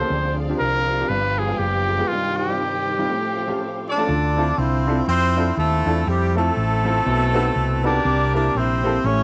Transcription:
Already playing: C5
0.10 D2 D3 F3 C4 D4 F4 G#4 C5 D5 F5
0.38 F4 G#4
0.49 C4 D4 F4 G4
0.60 C2 A#4
0.88 F4 G4
0.99 C4 D4 F4 G4
1.09 G1 G2 B3 G4 B4 G5
1.38 F4 G4 G#4
1.48 G#3 B3 F4 G#4
1.58 F#1 G4
1.87 F4 G#4
1.98 G#3 B3 F4 G#4
2.08 G2 C3 D#3 G3 D#4 F4 G4 C5 D#5
2.37 D#4 G4
2.48 G3 C4 D#4 F4
2.87 D#4 A#4
2.98 G3 C4 D#4 F4
3.08 A2 F3 A3 C4 C#4 A4 C5 F5
3.36 F4 G4
3.47 A3 C#4 F4 G4
3.87 D4 F4 A4 D5
3.97 A3 C#4 F4 A4
4.09 D2 D3
4.37 C4 D4 E4 F4 A4
4.58 C2 C4 E4 F4 C5
4.87 C4 D4 E4 F4 A4
5.07 F2 C4 E4 F4 C5
5.37 C4 D4 E4 F4 A4
5.57 D#2 A3 C4 F4 A4
5.86 E2 C4 D4 E4 F4 A4
6.07 F2 G3 C4 E4 G4
6.35 A3 C4 E4 F4 A4
6.57 A1
6.85 A3 C4 E4 F4 A4
7.06 B1 B2
7.34 B3 C4 D#4 F#4 A4
7.56 C2
7.84 B3 C4 D4 D#4 F#4 G4 A4 A#4 D5
8.05 C2 C3
8.34 A#3 C4 D4 E4 G4 A#4 D5
8.55 A#1 C4 E4 G4 C5
8.84 A#3 C4 E4 G4 A4
9.04 A1 A2 C#4 E4 G4 C#5

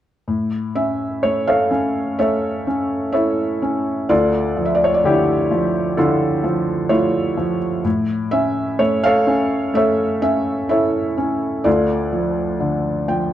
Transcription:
0.28 A2
0.75 C#4 E5
1.23 A3 C#5
1.47 A4 C#5 F5
1.71 C#4
2.19 A3 A4 C#5 E5
2.67 C#4
3.12 E4 A4 C#5 E5
3.62 C#4
4.09 D2 F4 A4 D5
4.56 F3
4.65 E5
4.75 D5
4.84 C#5
4.94 D5
5.04 D3 E4 G4
5.51 F3
5.97 D3 E4 F4 A4
6.44 F3
6.89 A3 E4 F4 C#5
7.37 F3
7.84 A2
8.31 C#4 E5
8.79 A3 C#5
9.04 A4 C#5 F5
9.27 C#4
9.74 A3 A4 C#5 E5
10.22 C#4 E5
10.69 E4 A4 C#5 E5
11.18 C#4
11.64 D2 F4 A4 D5
12.13 F3
12.60 D3
13.08 F3 G5

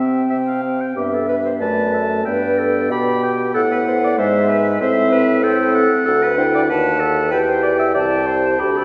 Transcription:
Already playing: C3 C4 E5 G5
0.30 C3 E5
0.47 F5
0.63 C4 G5
0.81 G5
0.96 G2 B3 G4 E5
1.14 A4
1.29 B4
1.46 C5
1.61 F#2 A3 B4 D5 A5
1.94 A4
2.25 G2 B3 B4 D5 G5
2.59 A4
2.91 B2 G4 G5 B5
3.23 G5
3.54 A2 A4 F#5
3.72 B4
3.88 C5
4.04 D5
4.18 G#2 G#3 C5 E5
4.49 B4
4.81 A2 C4 C5 E5
5.12 B4
5.43 C4 A4 C5 G5
5.75 F#5
6.06 D2 D4 A4 F#5
6.23 B4
6.38 E4 C5 G5
6.55 D5
6.69 D#2 F#4 B4 F#5 A5
7.00 A4
7.31 E2 G4 B4 G5
7.48 C5
7.63 D5
7.79 E5
7.95 C2 G4 D5 G5 A5
8.27 C5
8.60 D2 G4 B5
8.77 A4

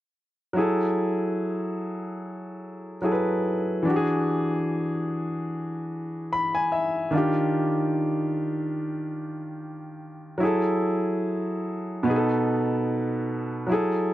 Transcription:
0.53 F#3 E4
0.58 G#4 A4
3.02 F#3 E4 G#4 A4
3.12 B4
3.83 E3 D4
3.87 F#4 G4
3.96 G#4
6.33 B5
6.55 G#5
6.72 E5
7.11 D#3 D4
7.15 F4 G4
10.38 F#3 E4
10.43 G#4 A4
12.03 B2 B3
12.08 D#4 G#4
12.16 A4
13.67 F#3 E4
13.72 G#4 A4

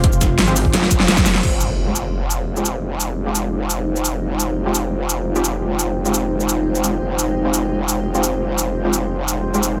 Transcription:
Already playing: F1 G#3 C4 F4 G4 C5 F5 C6
0.04 kick, closed hi-hat
0.12 shaker
0.21 kick, snare, closed hi-hat, shaker
0.39 G#1, snare, closed hi-hat
0.47 G#3 C4 F4 G4, shaker
0.56 open hi-hat, shaker
0.65 kick
0.73 F1, snare, closed hi-hat
0.82 snare
0.91 F1, kick, closed hi-hat, shaker
1.00 snare
1.08 F1, snare, closed hi-hat
1.17 kick, snare, shaker
1.26 snare, open hi-hat, shaker
1.34 snare
1.43 F1 D#4 F4 C5 F5 G5, crash, impact
1.61 G#3, shaker
1.78 C5
1.87 G#3 C4 F4 G4
1.96 shaker
2.30 shaker
2.57 G#3 C4 F4 G4, shaker
2.65 shaker
3.00 shaker
3.26 G#3 C4 F4 G4
3.35 shaker
3.70 shaker
3.96 shaker
4.05 shaker
4.40 shaker
4.66 G#3 C4 F4 G4
4.75 shaker
5.09 shaker
5.36 G#3 C4 F4 G4, shaker
5.44 shaker
5.79 shaker
6.05 G#3 C4 F4 G4, shaker
6.14 shaker
6.40 shaker
6.49 shaker
6.75 shaker
6.84 G#3 C4 F4 G4, shaker
7.01 F1 C6
7.19 shaker
7.45 G#3 C4 F4 G4
7.54 shaker
7.89 shaker
8.15 G#3 C4 F4 G4, shaker
8.23 shaker
8.58 shaker
8.85 G#3 C4 F4 G4
8.93 shaker
9.28 shaker
9.54 G#3 C4 F4 G4, shaker
9.63 shaker

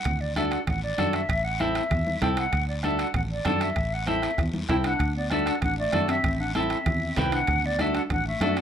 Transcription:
Already playing: F#5
0.05 D2, bombo low, bombo rim, low conga, high timbale, long guiro
0.21 D5
0.36 D4 F#4 A4 E5, bombo rim, high conga, high timbale, short guiro
0.51 F#5, bombo rim, high timbale, short guiro
0.67 A1 F#5, bombo low, bombo rim, low conga, high timbale, long guiro
0.83 D5
0.98 F#2 D4 F#4 A4, bombo rim, high conga, low conga, high timbale, short guiro
1.13 E5, bombo rim, high timbale, short guiro
1.29 A1, bombo low, bombo rim, high timbale, long guiro
1.44 F#5
1.59 C4 E4 A4 E5, bombo rim, high conga, high timbale, short guiro
1.75 bombo rim, high timbale, short guiro
1.91 E2, bombo low, bombo rim, low conga, high timbale, long guiro
2.07 high conga
2.22 C2 C4 E4 A4 G5, bombo low, bombo rim, high conga, high timbale, low timbale, short guiro
2.37 F#5, bombo rim, high timbale, short guiro
2.52 D2, bombo low, bombo rim, high timbale, long guiro
2.68 D5
2.83 D4 F#4 A4 E5, bombo rim, high conga, high timbale, short guiro
2.99 F#5, bombo rim, high timbale, short guiro
3.14 A1 F#5, bombo low, bombo rim, low conga, high timbale, long guiro
3.31 D5
3.45 F#2 D4 F#4 A4, bombo rim, high conga, low conga, high timbale, low timbale, short guiro
3.61 E5, bombo rim, high timbale, short guiro
3.76 A1, bombo low, bombo rim, high timbale, long guiro
3.94 F#5
4.06 C4 E4 A4 E5, bombo rim, high conga, high timbale, short guiro
4.22 bombo rim, high timbale, short guiro
4.38 E2, bombo low, bombo rim, low conga, high timbale, long guiro
4.54 high conga
4.69 C2 C4 E4 A4 G5, bombo low, bombo rim, high conga, high timbale, low timbale, short guiro
4.84 D4 F#5, bombo rim, high timbale, short guiro
4.99 D2, bombo low, bombo rim, high timbale, long guiro
5.16 B3 D5
5.30 A3 D4 F#4 A4 E5, bombo rim, high conga, high timbale, short guiro
5.46 D4 F#5, bombo rim, high timbale, short guiro
5.62 A1 D4 F#5, bombo low, bombo rim, low conga, high timbale, long guiro
5.79 A3 D5
5.93 F#2 D4 F#4 A4, bombo rim, high conga, low conga, high timbale, short guiro
6.08 C4 E5, bombo rim, high timbale, short guiro
6.24 A1, bombo low, bombo rim, low conga, high timbale, long guiro
6.40 D4 F#5
6.55 C4 E4 A4 E5, bombo rim, high conga, high timbale, short guiro
6.70 bombo rim, high timbale, short guiro
6.86 E2, bombo low, bombo rim, low conga, high timbale, long guiro
7.17 C2 C4 E4 B4 G5, bombo low, bombo rim, high conga, low conga, high timbale, low timbale, short guiro
7.32 D4 F#5, bombo rim, high timbale, short guiro
7.47 D2, bombo low, bombo rim, low conga, high timbale, long guiro
7.64 B3 D5
7.79 A3 D4 F#4 A4 E5, bombo rim, high conga, high timbale, short guiro
7.94 D4 F#5, bombo rim, high timbale, short guiro
8.10 A1 D4 F#5, bombo low, bombo rim, low conga, high timbale, long guiro
8.27 A3 E5
8.40 F#2 D4 F#4 A4, bombo rim, high conga, high timbale, low timbale, short guiro
8.56 C4, bombo rim, high timbale, short guiro

